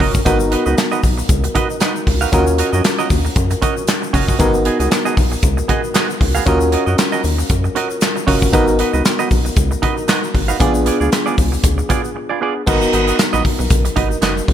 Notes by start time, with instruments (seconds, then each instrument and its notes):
Already playing: fm electric piano C#4 F4 F#4 A#4
0.00 analog synth bass F#1, clean electric guitar C#4 F#4 A#4 D#5, kick, open hi-hat
0.14 muted clean electric guitar stroke, kick, shaker
0.25 analog synth bass G#1, fm electric piano B3 D#4 F#4 A#4, clean electric guitar D#4 F#4 B4 D#5, kick, closed hi-hat, shaker
0.40 shaker
0.51 clean electric guitar D#4 F#4 B4 D#5, closed hi-hat
0.66 analog synth bass C#2, clean electric guitar D#4 F#4 B4 D#5, shaker
0.77 muted clean electric guitar stroke, snare, clap, closed hi-hat, shaker
0.92 clean electric guitar D#4 F#4 B4 D#5, shaker
1.03 analog synth bass B1, kick, open hi-hat, shaker
1.18 muted clean electric guitar stroke, shaker
1.29 analog synth bass C#2, kick, closed hi-hat, shaker
1.44 muted clean electric guitar stroke, closed hi-hat, shaker
1.55 clean electric guitar D#4 F#4 B4 D#5, kick, closed hi-hat
1.69 muted clean electric guitar stroke, shaker
1.80 clean electric guitar D#4 F#4 B4 D#5, snare, clap, closed hi-hat, shaker
1.95 muted clean electric guitar stroke, shaker
2.07 analog synth bass C#2, muted clean electric guitar stroke, kick, open hi-hat
2.21 clean electric guitar D#4 F#4 B4 F5, shaker
2.32 analog synth bass D#2, fm electric piano C#4 F4 F#4 A#4, clean electric guitar C#4 F#4 A#4 D#5, kick, closed hi-hat, shaker
2.47 muted clean electric guitar stroke, shaker
2.58 clean electric guitar C#4 F#4 A#4 D#5, closed hi-hat, shaker
2.73 analog synth bass F#2, clean electric guitar C#4 F#4 A#4 D#5, shaker
2.84 snare, clap, closed hi-hat, shaker
2.99 clean electric guitar C#4 F#4 A#4 D#5, shaker
3.10 analog synth bass D#2, muted clean electric guitar stroke, kick, open hi-hat, shaker
3.25 muted clean electric guitar stroke, shaker
3.36 analog synth bass F#2, kick, closed hi-hat, shaker
3.51 muted clean electric guitar stroke, closed hi-hat, shaker
3.62 clean electric guitar C#4 F#4 A#4 D#5, kick, closed hi-hat, shaker
3.76 muted clean electric guitar stroke, shaker
3.87 muted clean electric guitar stroke, snare, clap, closed hi-hat, shaker
4.02 muted clean electric guitar stroke, shaker
4.13 analog synth bass F#1, clean electric guitar C#4 F#4 A#4 D#5, kick, open hi-hat, shaker
4.28 clean electric guitar C#4 F#4 A#4 D#5, kick, shaker
4.39 analog synth bass G#1, fm electric piano B3 D#4 F#4 A#4, clean electric guitar B3 F#4 G#4 D#5, kick, closed hi-hat, shaker
4.54 muted clean electric guitar stroke, shaker
4.65 clean electric guitar B3 F#4 G#4 D#5, closed hi-hat
4.80 analog synth bass C#2, clean electric guitar B3 F#4 G#4 D#5, closed hi-hat, shaker
4.91 muted clean electric guitar stroke, snare, clap, closed hi-hat, shaker
5.05 clean electric guitar B3 F#4 G#4 D#5, shaker
5.17 analog synth bass B1, muted clean electric guitar stroke, kick, open hi-hat, shaker
5.32 muted clean electric guitar stroke, shaker
5.43 analog synth bass C#2, kick, closed hi-hat, shaker
5.57 muted clean electric guitar stroke, shaker
5.68 clean electric guitar B3 F#4 G#4 D#5, kick, closed hi-hat
5.83 muted clean electric guitar stroke, shaker
5.94 clean electric guitar B3 F#4 G#4 D#5, snare, clap, closed hi-hat, shaker
6.09 muted clean electric guitar stroke, shaker
6.20 analog synth bass C#2, muted clean electric guitar stroke, kick, open hi-hat
6.35 clean electric guitar B3 F#4 G#4 F5, shaker
6.46 analog synth bass D#2, fm electric piano C#4 F4 F#4 A#4, clean electric guitar C#4 F#4 A#4 D#5, kick, closed hi-hat, shaker
6.61 muted clean electric guitar stroke, shaker
6.72 clean electric guitar C#4 F#4 A#4 D#5, closed hi-hat
6.86 analog synth bass F#2, clean electric guitar C#4 F#4 A#4 D#5, shaker
6.98 snare, clap, closed hi-hat, shaker
7.12 clean electric guitar C#4 F#4 A#4 D#5, shaker
7.24 analog synth bass D#2, muted clean electric guitar stroke, open hi-hat, shaker
7.38 muted clean electric guitar stroke, shaker
7.49 analog synth bass F#2, kick, closed hi-hat, shaker
7.64 muted clean electric guitar stroke, shaker
7.75 clean electric guitar C#4 F#4 A#4 D#5, closed hi-hat
7.90 muted clean electric guitar stroke, shaker
8.01 snare, clap, closed hi-hat, shaker
8.16 muted clean electric guitar stroke, shaker
8.27 analog synth bass F#1, clean electric guitar C#4 F#4 A#4 D#5, fm electric piano C#4 F4 F#4 A#4, kick, open hi-hat
8.42 muted clean electric guitar stroke, kick, shaker
8.52 analog synth bass G#1, fm electric piano B3 D#4 F#4 A#4, clean electric guitar D#4 F#4 B4 D#5, kick, closed hi-hat, shaker
8.68 muted clean electric guitar stroke, shaker
8.79 clean electric guitar D#4 F#4 B4 D#5, closed hi-hat
8.93 analog synth bass C#2, clean electric guitar D#4 F#4 B4 D#5, shaker
9.05 snare, clap, closed hi-hat, shaker
9.19 clean electric guitar D#4 F#4 B4 D#5, shaker
9.31 analog synth bass B1, kick, open hi-hat, shaker
9.45 muted clean electric guitar stroke, shaker
9.56 analog synth bass C#2, kick, closed hi-hat, shaker
9.71 muted clean electric guitar stroke, shaker
9.82 clean electric guitar D#4 F#4 B4 D#5, kick, closed hi-hat
9.97 muted clean electric guitar stroke, shaker
10.08 clean electric guitar D#4 F#4 B4 D#5, snare, clap, closed hi-hat, shaker
10.23 muted clean electric guitar stroke, shaker
10.34 analog synth bass G#1, muted clean electric guitar stroke, kick, open hi-hat
10.48 clean electric guitar D#4 F#4 B4 F5, shaker
10.59 analog synth bass A#1, fm electric piano B3 D4 F4 G#4, clean electric guitar B3 F4 G#4 D5, kick, closed hi-hat, shaker
10.74 muted clean electric guitar stroke, shaker
10.86 clean electric guitar B3 F4 G#4 D5, closed hi-hat, shaker
11.00 analog synth bass D2, clean electric guitar B3 F4 G#4 D5, shaker
11.12 snare, clap, closed hi-hat, shaker
11.26 clean electric guitar B3 F4 G#4 D5, shaker
11.38 analog synth bass C#2, kick, open hi-hat, shaker
11.52 muted clean electric guitar stroke, shaker
11.64 analog synth bass D2, kick, closed hi-hat, shaker
11.78 muted clean electric guitar stroke, shaker
11.89 clean electric guitar B3 F4 G#4 D5, kick, closed hi-hat, shaker
12.05 shaker
12.15 muted clean electric guitar stroke
12.29 clean electric guitar B3 F4 G#4 D5
12.41 clean electric guitar B3 F4 G#4 D5
12.56 muted clean electric guitar stroke
12.66 analog synth bass G#1, fm electric piano B3 D#4 F#4 A#4, clean electric guitar D#4 F#4 B4 D#5, kick, crash, shaker
12.82 muted clean electric guitar stroke, shaker
12.93 analog synth bass G#1, clean electric guitar D#4 F#4 B4 D#5, closed hi-hat, shaker
13.07 clean electric guitar D#4 F#4 B4 D#5, closed hi-hat, shaker
13.19 muted clean electric guitar stroke, snare, clap, closed hi-hat, shaker
13.33 analog synth bass A#1, clean electric guitar D#4 F#4 B4 D#5, shaker
13.45 kick, open hi-hat
13.59 analog synth bass B1, muted clean electric guitar stroke, shaker
13.70 analog synth bass B1, kick, closed hi-hat, shaker
13.85 muted clean electric guitar stroke, closed hi-hat, shaker
13.96 analog synth bass G#1, clean electric guitar D#4 F#4 B4 D#5, kick, closed hi-hat
14.10 muted clean electric guitar stroke, shaker
14.22 analog synth bass F#1, clean electric guitar D#4 F#4 B4 D#5, snare, clap, closed hi-hat, shaker
14.36 muted clean electric guitar stroke, shaker
14.48 analog synth bass C#2, muted clean electric guitar stroke, kick, open hi-hat